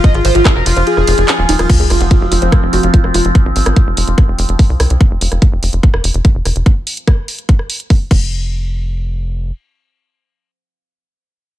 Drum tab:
CC |----------------|x---------------|----------------|----------------|
RD |--x---x---x---x-|----------------|----------------|----------------|
HH |x-oxx-oxx-oxo-ox|x-oxx-oxx-oxx-ox|x-oxx-oxx-oxo-ox|x-oxx-oxx-oxx-ox|
CP |----x-------x---|----------------|----------------|----------------|
SD |----r----r-----r|--r-----r----r--|---r----r-----r-|---r-----r----r-|
BD |o---o-----------|o---o---o---o---|o---o---o---o---|o---o---o---o---|

CC |--------------x-|----------------|----------------|
RD |----------------|----------------|----------------|
HH |x-oxx-oxx-oxo---|----------------|----------------|
CP |----------------|----------------|----------------|
SD |----r----r------|----------------|----------------|
BD |o---o---o---o-o-|----------------|----------------|